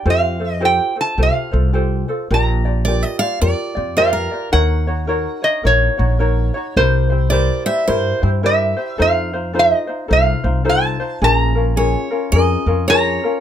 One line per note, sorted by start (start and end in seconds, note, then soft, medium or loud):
0.05 0.78 F2 medium
0.05 0.40 F4 medium
0.05 0.39 G4 medium
0.05 0.39 A4 medium
0.05 0.38 C5 medium
0.10 0.53 F5 medium
0.40 0.60 F4 soft
0.40 0.61 A4 soft
0.40 0.60 C5 medium
0.53 0.65 D#5 medium
0.60 0.96 F4 medium
0.60 0.95 G4 medium
0.60 0.95 A4 medium
0.60 0.94 C5 medium
0.65 0.95 G5 medium
0.96 1.17 F4 soft
0.96 1.17 A4 soft
0.96 1.17 C5 medium
1.01 1.20 A5 medium
1.18 1.29 C2 medium
1.18 1.52 F4 medium
1.18 1.51 G4 medium
1.18 1.51 A4 medium
1.18 1.50 C5 medium
1.23 2.35 F5 medium
1.52 2.03 C2 medium
1.52 1.72 F4 soft
1.52 1.73 A4 medium
1.52 1.73 C5 medium
1.73 2.08 F4 medium
1.73 2.08 G4 medium
1.73 2.08 A4 medium
1.73 2.07 C5 medium
2.08 2.30 F4 soft
2.08 2.30 A4 medium
2.08 2.29 C5 medium
2.31 3.03 A#1 loud
2.31 2.64 F4 medium
2.31 2.65 G4 medium
2.31 2.64 A#4 medium
2.31 2.64 D5 medium
2.31 3.95 A#5 medium
2.65 2.86 F4 soft
2.65 2.86 G4 soft
2.65 2.86 D5 medium
2.85 3.21 F4 medium
2.85 3.20 G4 medium
2.85 3.20 A#4 medium
2.85 3.03 D5 medium
2.85 3.18 D5 medium
3.03 3.19 D#5 medium
3.19 3.40 F4 medium
3.19 3.41 G4 medium
3.19 3.41 D5 medium
3.19 3.41 F5 loud
3.41 3.53 F2 medium
3.41 3.76 F4 medium
3.41 3.75 G4 medium
3.41 3.75 A#4 medium
3.41 3.99 D5 medium
3.41 3.74 D5 medium
3.75 4.26 F2 medium
3.75 3.97 F4 soft
3.75 3.97 G4 medium
3.75 3.97 D5 medium
3.97 4.32 F4 medium
3.97 4.32 G4 medium
3.97 4.31 A#4 medium
3.97 4.12 C5 medium
3.97 4.30 D5 loud
3.97 4.52 F5 medium
4.13 4.49 A#4 medium
4.31 4.52 F4 soft
4.31 4.51 G4 soft
4.31 4.53 D5 soft
4.52 5.26 D#2 medium
4.52 4.87 D#4 medium
4.52 4.87 F#4 medium
4.52 4.86 A#4 medium
4.52 4.86 C#5 medium
4.52 5.45 F#5 medium
4.87 5.07 D#4 soft
4.87 5.07 F#4 soft
4.87 5.08 C#5 soft
5.07 5.42 D#4 medium
5.07 5.42 F#4 medium
5.07 5.42 A#4 medium
5.07 5.41 C#5 medium
5.42 5.63 D#4 soft
5.42 5.64 F#4 soft
5.42 5.64 C#5 medium
5.42 5.65 D#5 medium
5.63 5.87 A#1 medium
5.63 5.98 D#4 medium
5.63 5.97 F#4 medium
5.63 5.98 A#4 medium
5.63 5.96 C#5 medium
5.63 6.77 C#5 medium
5.97 6.49 A#1 medium
5.97 6.19 D#4 medium
5.97 6.19 F#4 medium
5.97 6.19 C#5 soft
6.19 6.54 D#4 medium
6.19 6.54 F#4 medium
6.19 6.54 A#4 medium
6.19 6.53 C#5 medium
6.54 6.77 D#4 soft
6.54 6.76 F#4 soft
6.54 6.76 C#5 medium
6.76 7.49 C2 loud
6.76 7.11 E4 medium
6.76 7.10 G4 medium
6.76 7.10 A#4 medium
6.76 7.84 C5 medium
6.76 7.09 C5 loud
7.10 7.30 E4 soft
7.10 7.30 G4 soft
7.10 7.31 C5 soft
7.30 7.66 E4 medium
7.30 7.65 G4 medium
7.30 7.65 A#4 medium
7.30 7.65 C5 medium
7.30 7.65 D5 medium
7.66 7.87 E4 soft
7.66 7.87 G4 medium
7.66 7.87 C5 medium
7.66 7.86 E5 medium
7.87 8.10 G2 medium
7.87 8.22 E4 medium
7.87 8.22 G4 medium
7.87 8.21 A#4 medium
7.87 8.29 C5 medium
7.87 8.21 C5 medium
8.22 8.73 G2 medium
8.22 8.42 E4 medium
8.22 8.43 G4 medium
8.22 8.43 C5 medium
8.43 8.77 E4 medium
8.43 8.77 G4 medium
8.43 8.77 A#4 medium
8.43 8.76 C5 medium
8.43 9.01 E5 medium
8.77 8.99 E4 soft
8.77 8.98 G4 soft
8.77 8.98 C5 medium
8.98 9.72 F2 medium
8.98 9.33 D#4 medium
8.98 9.33 F4 medium
8.98 9.33 A4 medium
8.98 9.32 C5 medium
8.98 9.52 F5 medium
9.33 9.53 D#4 soft
9.33 9.54 F4 soft
9.33 9.54 C5 medium
9.53 9.88 D#4 medium
9.53 9.88 F4 medium
9.53 9.88 A4 medium
9.53 9.86 C5 medium
9.59 10.14 D#5 medium
9.87 10.07 D#4 soft
9.87 10.08 F4 medium
9.87 10.09 C5 medium
10.08 10.33 C2 loud
10.08 10.43 D#4 medium
10.08 10.44 F4 medium
10.08 10.43 A4 medium
10.08 10.42 C5 medium
10.13 10.69 F5 medium
10.44 10.94 C2 medium
10.44 10.64 D#4 soft
10.44 10.64 F4 medium
10.44 10.64 C5 medium
10.65 11.00 D#4 medium
10.65 11.00 F4 medium
10.65 10.99 A4 medium
10.65 10.99 C5 medium
10.69 11.24 A5 medium
11.00 11.22 D#4 soft
11.00 11.22 F4 medium
11.00 11.21 C5 medium
11.22 11.94 A#1 medium
11.22 11.56 C#4 medium
11.22 11.55 F4 medium
11.22 11.56 G#4 medium
11.22 11.54 A#4 medium
11.22 12.86 A#5 loud
11.55 11.76 C#4 soft
11.55 11.76 F4 soft
11.55 11.77 A#4 medium
11.76 12.11 C#4 medium
11.76 12.10 F4 medium
11.76 12.11 G#4 medium
11.76 12.09 A#4 medium
11.76 12.31 C#5 medium
12.11 12.33 C#4 soft
12.11 12.33 F4 medium
12.11 12.33 A#4 medium
12.32 12.55 F2 medium
12.32 12.68 C#4 medium
12.32 12.67 F4 medium
12.32 12.67 G#4 medium
12.32 12.66 A#4 medium
12.32 12.87 D#5 loud
12.66 13.17 F2 medium
12.66 12.88 C#4 soft
12.66 12.88 F4 medium
12.66 12.89 A#4 medium
12.88 13.23 C#4 medium
12.88 13.23 F4 medium
12.88 13.23 G#4 medium
12.88 13.22 A#4 loud
12.88 13.40 C#5 medium
12.88 13.40 A#5 loud
13.24 13.40 C#4 soft
13.24 13.40 F4 medium
13.24 13.40 A#4 medium